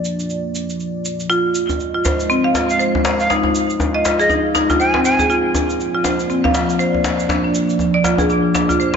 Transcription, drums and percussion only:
0.05 cabasa
0.20 cabasa
0.30 cabasa
0.55 cabasa
0.70 cabasa
0.80 cabasa
1.05 cabasa
1.20 cabasa
1.30 cabasa
1.55 cabasa
1.69 djembe tone, cabasa
1.80 cabasa
2.05 djembe slap, djembe tone, cabasa
2.20 cabasa
2.30 cabasa
2.54 djembe slap, djembe tone, cabasa
2.70 cabasa
2.80 cabasa
2.95 djembe tone
3.05 djembe slap, cabasa
3.20 cabasa
3.30 djembe slap, cabasa
3.44 djembe tone
3.55 cabasa
3.70 cabasa
3.80 djembe tone, cabasa
4.05 djembe slap, cabasa
4.20 cabasa
4.29 djembe tone, cabasa
4.55 djembe slap, cabasa
4.70 djembe tone, cabasa
4.80 cabasa
4.94 djembe slap
5.05 cabasa
5.19 djembe tone, cabasa
5.30 cabasa
5.55 djembe tone, cabasa
5.70 cabasa
5.80 cabasa
6.04 djembe slap, djembe tone, cabasa
6.20 cabasa
6.30 cabasa
6.45 djembe tone
6.55 djembe slap, cabasa
6.70 cabasa
6.80 cabasa
6.94 djembe tone
7.04 djembe slap, cabasa
7.20 cabasa
7.29 djembe slap, djembe tone, cabasa
7.55 cabasa
7.70 cabasa
7.79 djembe tone, cabasa
8.04 djembe slap, cabasa
8.18 djembe tone, cabasa
8.30 cabasa
8.55 djembe slap, cabasa
8.70 djembe tone, cabasa
8.80 cabasa

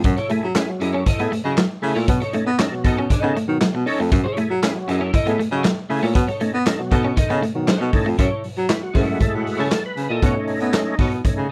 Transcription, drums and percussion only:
0.04 kick, closed hi-hat
0.17 closed hi-hat
0.29 closed hi-hat
0.55 snare, clap, closed hi-hat
0.81 closed hi-hat
1.06 kick, closed hi-hat
1.19 closed hi-hat
1.33 closed hi-hat
1.57 snare, clap, closed hi-hat
1.83 open hi-hat
2.08 kick, closed hi-hat
2.22 closed hi-hat
2.33 closed hi-hat
2.58 snare, clap, closed hi-hat
2.85 kick, closed hi-hat
3.10 kick, closed hi-hat
3.37 closed hi-hat
3.60 snare, clap, closed hi-hat
3.87 open hi-hat
4.12 kick, closed hi-hat
4.37 closed hi-hat
4.63 snare, clap, closed hi-hat
4.89 closed hi-hat
5.14 kick, closed hi-hat
5.27 closed hi-hat
5.40 closed hi-hat
5.64 snare, clap, closed hi-hat
5.90 open hi-hat
6.15 kick, closed hi-hat
6.28 closed hi-hat
6.40 closed hi-hat
6.66 snare, clap, closed hi-hat
6.92 kick, closed hi-hat
7.17 kick, closed hi-hat
7.30 closed hi-hat
7.43 closed hi-hat
7.67 snare, clap, closed hi-hat
7.93 kick, open hi-hat
8.19 kick, closed hi-hat
8.44 open hi-hat
8.57 closed hi-hat
8.69 snare, clap, closed hi-hat
8.95 kick, open hi-hat
9.20 kick, closed hi-hat
9.47 open hi-hat
9.71 snare, clap, closed hi-hat
9.97 closed hi-hat
10.22 kick, closed hi-hat
10.47 open hi-hat
10.60 closed hi-hat
10.73 snare, clap, closed hi-hat
10.99 kick, open hi-hat
11.12 closed hi-hat
11.25 kick, closed hi-hat

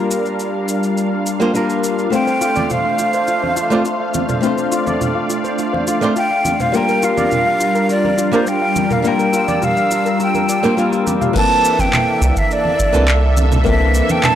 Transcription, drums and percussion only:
0.11 shaker
0.26 shaker
0.40 shaker
0.68 shaker
0.83 shaker
0.98 shaker
1.26 shaker
1.41 shaker
1.55 shaker
1.70 shaker
1.84 shaker
1.99 shaker
2.13 shaker
2.27 shaker
2.41 shaker
2.56 high conga, shaker
2.70 low conga, shaker
2.99 shaker
3.13 shaker
3.27 shaker
3.44 high conga
3.57 shaker
3.71 shaker
3.85 shaker
4.14 high conga, shaker
4.29 low conga, shaker
4.43 shaker
4.58 shaker
4.72 shaker
4.87 high conga, shaker
5.01 low conga, shaker
5.30 shaker
5.45 shaker
5.58 shaker
5.74 high conga
5.87 shaker
6.02 shaker
6.16 shaker
6.45 high conga, shaker
6.60 low conga, shaker
6.74 shaker
6.89 shaker
7.03 shaker
7.18 high conga, shaker
7.31 low conga, shaker
7.60 shaker
7.75 shaker
7.89 shaker
8.05 high conga
8.18 shaker
8.33 shaker
8.47 shaker
8.76 high conga, shaker
8.90 low conga, shaker
9.04 shaker
9.19 shaker
9.33 shaker
9.48 high conga, shaker
9.62 low conga, shaker
9.77 shaker
9.91 shaker
10.06 shaker
10.20 shaker
10.35 high conga, shaker
10.49 shaker
10.64 shaker
10.78 shaker
10.93 shaker
11.07 high conga, shaker
11.22 low conga, shaker
11.35 kick, crash, shaker
11.65 shaker
11.79 kick, high conga, shaker
11.93 clap, low conga, shaker
12.22 shaker
12.37 kick, shaker
12.51 shaker
12.65 high conga
12.79 kick, shaker
12.94 shaker
13.08 clap, shaker
13.37 high conga, shaker
13.52 low conga, shaker
13.66 kick, shaker
13.94 shaker
14.09 high conga, shaker
14.23 clap, low conga, shaker

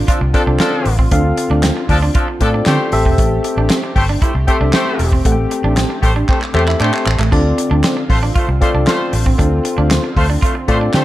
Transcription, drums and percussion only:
0.08 kick, closed hi-hat
0.34 kick, closed hi-hat
0.60 snare, clap, closed hi-hat
0.85 open hi-hat
0.99 kick
1.11 kick, closed hi-hat
1.37 closed hi-hat
1.63 snare, clap, closed hi-hat
1.89 kick, open hi-hat
2.15 kick, closed hi-hat
2.41 kick, closed hi-hat
2.66 snare, clap, closed hi-hat
2.92 open hi-hat
3.05 kick
3.18 kick, closed hi-hat
3.44 closed hi-hat
3.70 snare, clap, closed hi-hat
3.96 kick, open hi-hat
4.22 kick, closed hi-hat
4.48 kick, closed hi-hat
4.73 snare, clap, closed hi-hat
4.99 open hi-hat
5.12 kick
5.25 kick, closed hi-hat
5.51 closed hi-hat
5.77 snare, clap, closed hi-hat
6.03 kick, closed hi-hat
6.29 kick, clap
6.42 clap
6.55 clap
6.68 clap
6.81 clap
6.94 clap
7.07 clap
7.20 clap
7.32 kick, splash
7.58 closed hi-hat
7.84 snare, clap, closed hi-hat
8.10 kick, open hi-hat
8.36 kick, closed hi-hat
8.62 kick, closed hi-hat
8.87 snare, clap, closed hi-hat
9.13 open hi-hat
9.26 kick
9.39 kick, closed hi-hat
9.65 closed hi-hat
9.91 snare, clap, closed hi-hat
10.17 kick, open hi-hat
10.43 kick, closed hi-hat
10.68 kick, closed hi-hat
10.94 snare, clap, closed hi-hat

